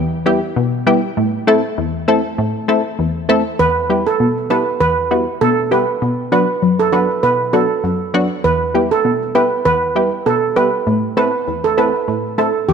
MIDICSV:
0, 0, Header, 1, 3, 480
1, 0, Start_track
1, 0, Key_signature, 1, "minor"
1, 0, Tempo, 606061
1, 927, Time_signature, 4, 2, 24, 8
1, 10084, End_track
2, 0, Start_track
2, 0, Title_t, "Steel pan"
2, 0, Program_c, 0, 114
2, 2847, Note_on_c, 0, 71, 99
2, 2944, Note_off_c, 0, 71, 0
2, 3220, Note_on_c, 0, 69, 69
2, 3297, Note_off_c, 0, 69, 0
2, 3567, Note_on_c, 0, 71, 70
2, 3664, Note_off_c, 0, 71, 0
2, 3805, Note_on_c, 0, 71, 97
2, 4158, Note_off_c, 0, 71, 0
2, 4287, Note_on_c, 0, 69, 89
2, 4384, Note_off_c, 0, 69, 0
2, 4527, Note_on_c, 0, 71, 77
2, 4624, Note_off_c, 0, 71, 0
2, 5007, Note_on_c, 0, 71, 76
2, 5104, Note_off_c, 0, 71, 0
2, 5381, Note_on_c, 0, 69, 68
2, 5458, Note_off_c, 0, 69, 0
2, 5485, Note_on_c, 0, 71, 75
2, 5583, Note_off_c, 0, 71, 0
2, 5727, Note_on_c, 0, 71, 83
2, 5825, Note_off_c, 0, 71, 0
2, 5966, Note_on_c, 0, 69, 72
2, 6064, Note_off_c, 0, 69, 0
2, 6687, Note_on_c, 0, 71, 87
2, 6784, Note_off_c, 0, 71, 0
2, 7060, Note_on_c, 0, 69, 77
2, 7137, Note_off_c, 0, 69, 0
2, 7406, Note_on_c, 0, 71, 73
2, 7504, Note_off_c, 0, 71, 0
2, 7646, Note_on_c, 0, 71, 97
2, 7998, Note_off_c, 0, 71, 0
2, 8127, Note_on_c, 0, 69, 72
2, 8225, Note_off_c, 0, 69, 0
2, 8367, Note_on_c, 0, 71, 82
2, 8464, Note_off_c, 0, 71, 0
2, 8847, Note_on_c, 0, 71, 82
2, 8944, Note_off_c, 0, 71, 0
2, 9221, Note_on_c, 0, 69, 75
2, 9297, Note_off_c, 0, 69, 0
2, 9328, Note_on_c, 0, 71, 77
2, 9425, Note_off_c, 0, 71, 0
2, 9807, Note_on_c, 0, 69, 70
2, 9904, Note_off_c, 0, 69, 0
2, 10047, Note_on_c, 0, 67, 77
2, 10084, Note_off_c, 0, 67, 0
2, 10084, End_track
3, 0, Start_track
3, 0, Title_t, "Synth stab"
3, 0, Program_c, 1, 62
3, 0, Note_on_c, 1, 40, 90
3, 204, Note_on_c, 1, 55, 90
3, 206, Note_on_c, 1, 59, 82
3, 207, Note_on_c, 1, 64, 83
3, 208, Note_on_c, 1, 67, 99
3, 313, Note_off_c, 1, 55, 0
3, 314, Note_off_c, 1, 59, 0
3, 314, Note_off_c, 1, 64, 0
3, 315, Note_off_c, 1, 67, 0
3, 334, Note_off_c, 1, 40, 0
3, 446, Note_on_c, 1, 47, 89
3, 685, Note_on_c, 1, 55, 92
3, 686, Note_on_c, 1, 59, 83
3, 687, Note_on_c, 1, 64, 85
3, 689, Note_on_c, 1, 67, 99
3, 793, Note_off_c, 1, 55, 0
3, 794, Note_off_c, 1, 59, 0
3, 794, Note_off_c, 1, 64, 0
3, 795, Note_off_c, 1, 67, 0
3, 814, Note_off_c, 1, 47, 0
3, 927, Note_on_c, 1, 45, 87
3, 1166, Note_on_c, 1, 57, 94
3, 1167, Note_on_c, 1, 60, 85
3, 1169, Note_on_c, 1, 64, 85
3, 1170, Note_on_c, 1, 69, 101
3, 1274, Note_off_c, 1, 57, 0
3, 1274, Note_off_c, 1, 60, 0
3, 1275, Note_off_c, 1, 64, 0
3, 1276, Note_off_c, 1, 69, 0
3, 1295, Note_off_c, 1, 45, 0
3, 1408, Note_on_c, 1, 40, 92
3, 1646, Note_on_c, 1, 57, 95
3, 1647, Note_on_c, 1, 60, 85
3, 1649, Note_on_c, 1, 64, 84
3, 1650, Note_on_c, 1, 69, 103
3, 1754, Note_off_c, 1, 57, 0
3, 1754, Note_off_c, 1, 60, 0
3, 1755, Note_off_c, 1, 64, 0
3, 1756, Note_off_c, 1, 69, 0
3, 1775, Note_off_c, 1, 40, 0
3, 1887, Note_on_c, 1, 45, 92
3, 2124, Note_on_c, 1, 57, 88
3, 2126, Note_on_c, 1, 60, 84
3, 2127, Note_on_c, 1, 64, 86
3, 2129, Note_on_c, 1, 69, 98
3, 2233, Note_off_c, 1, 57, 0
3, 2234, Note_off_c, 1, 60, 0
3, 2234, Note_off_c, 1, 64, 0
3, 2235, Note_off_c, 1, 69, 0
3, 2255, Note_off_c, 1, 45, 0
3, 2366, Note_on_c, 1, 40, 86
3, 2604, Note_on_c, 1, 57, 90
3, 2606, Note_on_c, 1, 60, 84
3, 2607, Note_on_c, 1, 64, 81
3, 2608, Note_on_c, 1, 69, 102
3, 2713, Note_off_c, 1, 57, 0
3, 2714, Note_off_c, 1, 60, 0
3, 2714, Note_off_c, 1, 64, 0
3, 2715, Note_off_c, 1, 69, 0
3, 2734, Note_off_c, 1, 40, 0
3, 2847, Note_on_c, 1, 40, 68
3, 3085, Note_on_c, 1, 55, 74
3, 3086, Note_on_c, 1, 59, 66
3, 3088, Note_on_c, 1, 64, 66
3, 3089, Note_on_c, 1, 67, 79
3, 3193, Note_off_c, 1, 55, 0
3, 3194, Note_off_c, 1, 59, 0
3, 3195, Note_off_c, 1, 64, 0
3, 3195, Note_off_c, 1, 67, 0
3, 3214, Note_off_c, 1, 40, 0
3, 3326, Note_on_c, 1, 47, 75
3, 3564, Note_on_c, 1, 55, 75
3, 3566, Note_on_c, 1, 59, 66
3, 3568, Note_on_c, 1, 64, 68
3, 3569, Note_on_c, 1, 69, 80
3, 3673, Note_off_c, 1, 55, 0
3, 3674, Note_off_c, 1, 59, 0
3, 3675, Note_off_c, 1, 64, 0
3, 3675, Note_off_c, 1, 69, 0
3, 3694, Note_off_c, 1, 47, 0
3, 3807, Note_on_c, 1, 40, 70
3, 4045, Note_on_c, 1, 55, 70
3, 4046, Note_on_c, 1, 59, 66
3, 4047, Note_on_c, 1, 64, 64
3, 4049, Note_on_c, 1, 66, 75
3, 4153, Note_off_c, 1, 55, 0
3, 4154, Note_off_c, 1, 59, 0
3, 4154, Note_off_c, 1, 64, 0
3, 4155, Note_off_c, 1, 66, 0
3, 4175, Note_off_c, 1, 40, 0
3, 4286, Note_on_c, 1, 47, 71
3, 4523, Note_on_c, 1, 55, 77
3, 4525, Note_on_c, 1, 59, 66
3, 4526, Note_on_c, 1, 64, 70
3, 4528, Note_on_c, 1, 67, 79
3, 4632, Note_off_c, 1, 55, 0
3, 4633, Note_off_c, 1, 59, 0
3, 4634, Note_off_c, 1, 64, 0
3, 4635, Note_off_c, 1, 67, 0
3, 4654, Note_off_c, 1, 47, 0
3, 4766, Note_on_c, 1, 47, 82
3, 5004, Note_on_c, 1, 54, 73
3, 5005, Note_on_c, 1, 59, 70
3, 5007, Note_on_c, 1, 62, 66
3, 5008, Note_on_c, 1, 66, 84
3, 5113, Note_off_c, 1, 54, 0
3, 5113, Note_off_c, 1, 59, 0
3, 5114, Note_off_c, 1, 62, 0
3, 5115, Note_off_c, 1, 66, 0
3, 5134, Note_off_c, 1, 47, 0
3, 5246, Note_on_c, 1, 42, 77
3, 5484, Note_on_c, 1, 54, 75
3, 5486, Note_on_c, 1, 59, 67
3, 5487, Note_on_c, 1, 62, 67
3, 5489, Note_on_c, 1, 66, 81
3, 5593, Note_off_c, 1, 54, 0
3, 5594, Note_off_c, 1, 59, 0
3, 5594, Note_off_c, 1, 62, 0
3, 5595, Note_off_c, 1, 66, 0
3, 5614, Note_off_c, 1, 42, 0
3, 5727, Note_on_c, 1, 47, 69
3, 5964, Note_on_c, 1, 54, 71
3, 5966, Note_on_c, 1, 59, 66
3, 5967, Note_on_c, 1, 62, 62
3, 5969, Note_on_c, 1, 66, 78
3, 6073, Note_off_c, 1, 54, 0
3, 6074, Note_off_c, 1, 59, 0
3, 6075, Note_off_c, 1, 62, 0
3, 6075, Note_off_c, 1, 66, 0
3, 6094, Note_off_c, 1, 47, 0
3, 6207, Note_on_c, 1, 42, 86
3, 6445, Note_on_c, 1, 54, 89
3, 6447, Note_on_c, 1, 59, 77
3, 6448, Note_on_c, 1, 62, 81
3, 6449, Note_on_c, 1, 66, 102
3, 6553, Note_off_c, 1, 54, 0
3, 6554, Note_off_c, 1, 59, 0
3, 6555, Note_off_c, 1, 62, 0
3, 6555, Note_off_c, 1, 66, 0
3, 6574, Note_off_c, 1, 42, 0
3, 6687, Note_on_c, 1, 40, 69
3, 6925, Note_on_c, 1, 55, 72
3, 6926, Note_on_c, 1, 59, 68
3, 6927, Note_on_c, 1, 64, 67
3, 6929, Note_on_c, 1, 67, 83
3, 7033, Note_off_c, 1, 55, 0
3, 7034, Note_off_c, 1, 59, 0
3, 7035, Note_off_c, 1, 64, 0
3, 7035, Note_off_c, 1, 67, 0
3, 7055, Note_off_c, 1, 40, 0
3, 7166, Note_on_c, 1, 47, 76
3, 7404, Note_on_c, 1, 55, 73
3, 7405, Note_on_c, 1, 59, 67
3, 7407, Note_on_c, 1, 64, 68
3, 7408, Note_on_c, 1, 67, 84
3, 7513, Note_off_c, 1, 55, 0
3, 7513, Note_off_c, 1, 59, 0
3, 7514, Note_off_c, 1, 64, 0
3, 7515, Note_off_c, 1, 67, 0
3, 7534, Note_off_c, 1, 47, 0
3, 7646, Note_on_c, 1, 40, 74
3, 7884, Note_on_c, 1, 55, 72
3, 7885, Note_on_c, 1, 59, 63
3, 7887, Note_on_c, 1, 64, 68
3, 7888, Note_on_c, 1, 67, 81
3, 7993, Note_off_c, 1, 55, 0
3, 7993, Note_off_c, 1, 59, 0
3, 7994, Note_off_c, 1, 64, 0
3, 7995, Note_off_c, 1, 67, 0
3, 8014, Note_off_c, 1, 40, 0
3, 8127, Note_on_c, 1, 47, 73
3, 8364, Note_on_c, 1, 55, 76
3, 8366, Note_on_c, 1, 59, 69
3, 8367, Note_on_c, 1, 64, 66
3, 8368, Note_on_c, 1, 67, 80
3, 8473, Note_off_c, 1, 55, 0
3, 8474, Note_off_c, 1, 59, 0
3, 8474, Note_off_c, 1, 64, 0
3, 8475, Note_off_c, 1, 67, 0
3, 8495, Note_off_c, 1, 47, 0
3, 8606, Note_on_c, 1, 45, 84
3, 8845, Note_on_c, 1, 57, 76
3, 8846, Note_on_c, 1, 60, 69
3, 8847, Note_on_c, 1, 64, 67
3, 8849, Note_on_c, 1, 69, 85
3, 8953, Note_off_c, 1, 57, 0
3, 8954, Note_off_c, 1, 60, 0
3, 8955, Note_off_c, 1, 64, 0
3, 8955, Note_off_c, 1, 69, 0
3, 8974, Note_off_c, 1, 45, 0
3, 9087, Note_on_c, 1, 40, 78
3, 9325, Note_on_c, 1, 57, 77
3, 9326, Note_on_c, 1, 60, 65
3, 9327, Note_on_c, 1, 64, 68
3, 9329, Note_on_c, 1, 69, 80
3, 9433, Note_off_c, 1, 57, 0
3, 9434, Note_off_c, 1, 60, 0
3, 9434, Note_off_c, 1, 64, 0
3, 9435, Note_off_c, 1, 69, 0
3, 9454, Note_off_c, 1, 40, 0
3, 9566, Note_on_c, 1, 45, 86
3, 9805, Note_on_c, 1, 57, 71
3, 9807, Note_on_c, 1, 60, 66
3, 9808, Note_on_c, 1, 64, 64
3, 9810, Note_on_c, 1, 69, 77
3, 9913, Note_off_c, 1, 57, 0
3, 9914, Note_off_c, 1, 60, 0
3, 9915, Note_off_c, 1, 64, 0
3, 9916, Note_off_c, 1, 69, 0
3, 9934, Note_off_c, 1, 45, 0
3, 10047, Note_on_c, 1, 40, 69
3, 10084, Note_off_c, 1, 40, 0
3, 10084, End_track
0, 0, End_of_file